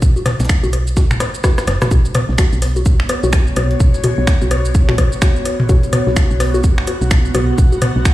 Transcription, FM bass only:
0.02 B1
0.40 B1
0.64 B1
1.67 F#1
1.91 B1
2.29 B1
2.53 B1
3.24 B1
3.57 B1
3.80 B1
4.18 B1
4.42 B1
4.98 B1
5.69 B1
6.07 B1
6.31 B1
7.01 B1
7.35 B1
7.58 B1
7.96 B1

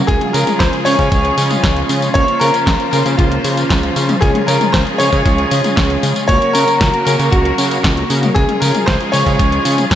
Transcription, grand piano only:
Already playing: F#4
0.07 G#4
0.33 A#4
0.59 C5
0.85 C#5
2.14 C#5
2.40 A#4
2.91 A#4
3.17 F4
4.21 G#4
4.47 A#4
4.72 C5
4.98 C#5
6.28 C#5
6.53 A#4
7.05 A#4
7.31 F#4
8.35 G#4
8.60 A#4
8.86 C5
9.12 C#5

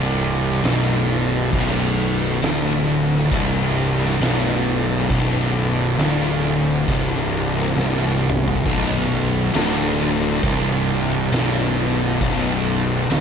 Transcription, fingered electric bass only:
Already playing: C1
0.64 B0
1.53 B0
2.43 D1
3.32 C1
4.20 B0
5.10 B0
5.98 D1
6.88 C1
7.76 C1
8.66 B0
9.55 D1
10.43 C1
11.32 B0
12.22 B0
13.10 D1

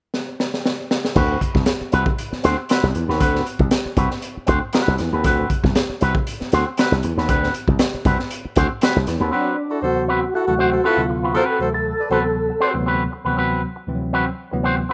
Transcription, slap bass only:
1.16 D2
1.55 C2
1.81 muted slap bass stroke
1.93 C2
2.32 muted slap bass stroke
2.44 D2
2.83 C2
2.95 E2
3.09 D#2
3.21 D2
3.60 C2
3.86 muted slap bass stroke
3.97 C2
4.37 muted slap bass stroke
4.49 D2
4.88 C2
5.00 E2
5.13 D#2
5.25 D2
5.64 C2
5.89 muted slap bass stroke
6.02 C2
6.42 muted slap bass stroke
6.53 D2
6.92 C2
7.04 E2
7.17 D#2
7.29 D2
7.68 C2
7.94 muted slap bass stroke
8.05 C2
8.45 muted slap bass stroke
8.57 D2
8.96 C2
9.07 E2
9.20 D#2

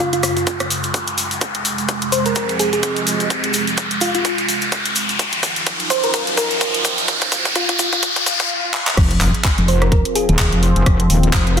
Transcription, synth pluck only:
0.13 F4
0.23 F4
0.37 F4
2.12 C5
2.26 A#4
2.36 A#4
2.60 G#4
2.73 G#4
4.01 F4
4.15 F4
5.90 C5
6.04 A#4
6.14 A#4
6.38 A#4
7.56 F4
7.69 F4
7.79 F4
7.93 F4
9.68 C5
9.82 A#4
9.92 A#4
10.15 G#4
10.29 G#4

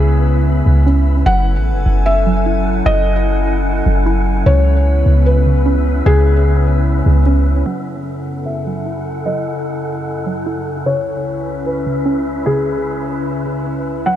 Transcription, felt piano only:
Already playing: G#4
1.26 F#5
2.06 E5
2.86 D#5
4.46 C#5
5.26 B4
6.06 G#4
7.66 F#5
8.46 E5
9.26 D#5
10.86 C#5
11.66 B4
12.46 G#4
14.06 F#5

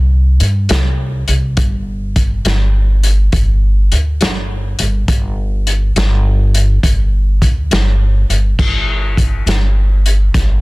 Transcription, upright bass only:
Already playing: C2
0.41 G2
0.70 C2
1.29 C2
1.57 G1
2.46 G1
3.33 G1
3.92 D2
4.21 G1
4.80 G1
5.08 G1
5.96 G1
6.83 G1
7.42 D2
7.71 G1
8.30 G1
8.59 G1
9.46 G1
10.34 G1

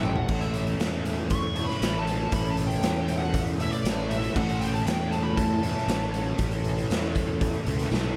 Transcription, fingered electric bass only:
0.05 A1
0.29 A1
0.80 E2
1.82 A1
2.33 A1
2.83 E2
3.84 A1
4.36 A1
4.86 E2
5.88 A1
6.39 A1
6.90 E2
7.67 C#2
7.91 B1

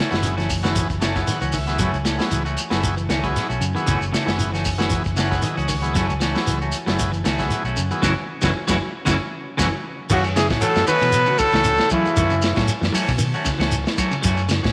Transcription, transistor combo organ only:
0.11 F#3 B3 E4 G#4
0.63 F#3 B3 E4 G#4
1.00 A5
1.15 F#3 B3 E4 G#4
1.28 F#5
1.54 E5
1.67 F#3 B3 E4 G#4
2.18 F#3 B3 E4 G#4
2.70 F#3 B3 E4 G#4
3.24 F#3 B3 E4 G#4
3.75 F#3 B3 E4 G#4
4.26 F#3 B3 E4 G#4
4.78 F#3 B3 E4 G#4
5.17 F#5
5.31 F#3 B3 E4 G#4
5.43 D#5
5.69 C#5
5.82 F#3 B3 E4 G#4
6.34 F#3 B3 E4 G#4
6.87 F#3 B3 E4 G#4
7.39 F#3 B3 E4 G#4
7.91 F#3 B3 E4 G#4
8.02 C#4 E4 F#4
8.43 C#4 E4 F#4
8.67 C#4 E4 F#4
9.06 C#4 E4 F#4
9.59 C#4 E4 F#4

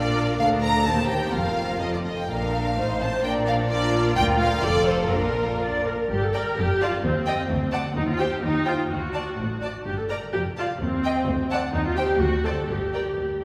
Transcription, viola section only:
Already playing: A#4
0.41 A4
0.87 G4
1.35 F4
2.29 A#4
2.78 C5
3.24 D5
3.71 F4
4.64 A4
5.11 A#4
5.60 D5
5.86 A#4
6.10 G4
6.23 A4
6.34 A#4
6.58 G4
6.82 F4
7.05 C4
7.96 D#4
8.08 F4
8.20 G4
8.42 D#4
8.66 F4
8.90 F#4
9.87 G4
9.98 A4
10.09 A#4
10.33 G4
10.58 F4
10.80 C4
11.73 D#4
11.86 F4
11.96 G4
12.20 F#4
12.44 A4
12.69 G4

